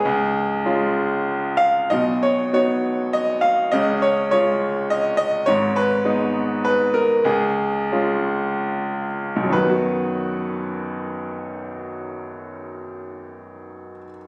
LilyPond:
<<
  \new Staff \with { instrumentName = "Grand piano" } { \time 3/4 \key b \lydian \tempo 4 = 95 gis'2~ gis'8 eis''8 | dis''8 cis''8 cis''4 dis''8 eis''8 | dis''8 cis''8 cis''4 dis''8 dis''8 | cis''8 b'4. b'8 ais'8 |
gis'2~ gis'8 r8 | b'2.~ | b'2. | }
  \new Staff \with { instrumentName = "Grand piano" } { \clef bass \time 3/4 \key b \lydian cis,4 <gis cis' eis'>2 | <b,, b,>4 <b dis' fis'>2 | <cis, cis>4 <gis cis' eis'>2 | <gis,, gis,>4 <gis b dis'>2 |
cis,4 <gis cis' eis'>2 | <b,, fis, dis fis b fis'>2.~ | <b,, fis, dis fis b fis'>2. | }
>>